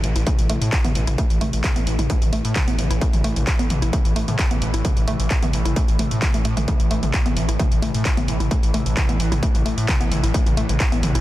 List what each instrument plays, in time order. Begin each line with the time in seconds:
Already playing: synth drone A2 E3
0.04 analog synth bass A1, open hi-hat
0.16 analog synth bass A1, synth arpeggio sound E4, closed hi-hat
0.27 synth arpeggio sound A3, kick, closed hi-hat, mid tom
0.39 analog synth bass A1, closed hi-hat
0.49 analog synth bass A1, synth arpeggio sound A3, open hi-hat, mid tom
0.62 analog synth bass A2, closed hi-hat
0.72 kick, clap, closed hi-hat
0.84 analog synth bass A1, synth arpeggio sound B3, closed hi-hat, mid tom
0.95 analog synth bass A1, open hi-hat
1.07 analog synth bass A1, synth arpeggio sound E4, closed hi-hat, mid tom
1.18 synth arpeggio sound A3, kick, closed hi-hat
1.30 analog synth bass A1, closed hi-hat
1.41 analog synth bass A1, synth arpeggio sound A3, open hi-hat, mid tom
1.53 analog synth bass A1, closed hi-hat
1.64 kick, clap, closed hi-hat, mid tom
1.76 analog synth bass A1, synth arpeggio sound B3, closed hi-hat
1.87 analog synth bass A1, open hi-hat
1.99 analog synth bass A1, synth arpeggio sound E4, closed hi-hat, mid tom
2.10 synth arpeggio sound A3, kick, closed hi-hat
2.22 analog synth bass A1, closed hi-hat, mid tom
2.33 analog synth bass A1, synth arpeggio sound A3, open hi-hat
2.45 analog synth bass A2, closed hi-hat
2.56 kick, clap, closed hi-hat, mid tom
2.68 analog synth bass A1, synth arpeggio sound B3, closed hi-hat
2.79 analog synth bass A1, open hi-hat, mid tom
2.91 analog synth bass A1, synth arpeggio sound E4, closed hi-hat
3.01 synth arpeggio sound A3, kick, closed hi-hat
3.13 analog synth bass A1, closed hi-hat, mid tom
3.24 analog synth bass A1, synth arpeggio sound A3, open hi-hat
3.36 analog synth bass A1, closed hi-hat, mid tom
3.47 kick, clap, closed hi-hat
3.59 analog synth bass A1, synth arpeggio sound B3, closed hi-hat
3.70 analog synth bass A1, open hi-hat, mid tom
3.82 analog synth bass A1, synth arpeggio sound E4, closed hi-hat
3.93 synth arpeggio sound A3, kick, closed hi-hat, mid tom
4.05 analog synth bass A1, closed hi-hat
4.16 analog synth bass A1, synth arpeggio sound A3, open hi-hat
4.28 analog synth bass A2, closed hi-hat, mid tom
4.39 kick, clap, closed hi-hat
4.51 analog synth bass A1, synth arpeggio sound B3, closed hi-hat, mid tom
4.62 analog synth bass A1, open hi-hat
4.74 analog synth bass A1, synth arpeggio sound E4, closed hi-hat
4.85 synth arpeggio sound A3, kick, closed hi-hat, mid tom
4.97 analog synth bass A1, closed hi-hat
5.08 analog synth bass A1, synth arpeggio sound A3, open hi-hat, mid tom
5.20 analog synth bass A1, closed hi-hat
5.30 kick, clap, closed hi-hat
5.42 analog synth bass A1, synth arpeggio sound B3, closed hi-hat, mid tom
5.53 analog synth bass A1, open hi-hat
5.65 analog synth bass A1, synth arpeggio sound E4, closed hi-hat, mid tom
5.76 synth arpeggio sound A3, kick, closed hi-hat
5.88 analog synth bass A1, closed hi-hat
5.99 analog synth bass A1, synth arpeggio sound A3, open hi-hat, mid tom
6.11 analog synth bass A2, closed hi-hat
6.22 kick, clap, closed hi-hat, mid tom
6.34 analog synth bass A1, synth arpeggio sound A3, closed hi-hat
6.45 analog synth bass A2, synth arpeggio sound A3, open hi-hat
6.57 analog synth bass A1, synth arpeggio sound A3, closed hi-hat, mid tom
6.68 synth arpeggio sound A3, kick, closed hi-hat, mid tom
6.80 analog synth bass A1, closed hi-hat
6.91 analog synth bass A1, synth arpeggio sound A3, open hi-hat
7.03 analog synth bass A1, closed hi-hat, mid tom
7.14 kick, clap, closed hi-hat
7.26 analog synth bass A1, synth arpeggio sound B3, closed hi-hat, mid tom
7.37 analog synth bass A1, open hi-hat
7.49 analog synth bass A1, synth arpeggio sound E4, closed hi-hat
7.59 synth arpeggio sound A3, kick, closed hi-hat, mid tom
7.72 analog synth bass A1, closed hi-hat
7.82 analog synth bass A1, synth arpeggio sound A3, open hi-hat, mid tom
7.94 analog synth bass A2, closed hi-hat
8.05 kick, clap, closed hi-hat
8.17 analog synth bass A1, synth arpeggio sound B3, closed hi-hat, mid tom
8.28 analog synth bass A1, open hi-hat
8.40 analog synth bass A1, synth arpeggio sound E4, closed hi-hat, mid tom
8.51 synth arpeggio sound A3, kick, closed hi-hat
8.63 analog synth bass A1, closed hi-hat
8.74 analog synth bass A1, synth arpeggio sound A3, open hi-hat, mid tom
8.86 analog synth bass A1, closed hi-hat
8.97 kick, clap, closed hi-hat, mid tom
9.09 analog synth bass A1, synth arpeggio sound B3, closed hi-hat
9.20 analog synth bass A1, open hi-hat
9.32 analog synth bass A1, synth arpeggio sound E4, closed hi-hat, mid tom
9.43 synth arpeggio sound A3, kick, closed hi-hat
9.55 analog synth bass A1, closed hi-hat, mid tom
9.66 analog synth bass A1, synth arpeggio sound A3, open hi-hat
9.78 analog synth bass A2, closed hi-hat
9.88 kick, clap, closed hi-hat, mid tom
10.00 analog synth bass A1, synth arpeggio sound B3, closed hi-hat
10.11 analog synth bass A1, open hi-hat, mid tom
10.23 analog synth bass A1, synth arpeggio sound E4, closed hi-hat
10.34 synth arpeggio sound A3, kick, closed hi-hat
10.46 analog synth bass A1, closed hi-hat, mid tom
10.57 analog synth bass A1, synth arpeggio sound A3, open hi-hat
10.69 analog synth bass A1, closed hi-hat, mid tom
10.80 kick, clap, closed hi-hat
10.92 analog synth bass A1, synth arpeggio sound B3, closed hi-hat
11.03 analog synth bass A1, open hi-hat, mid tom
11.15 analog synth bass A1, synth arpeggio sound E4, closed hi-hat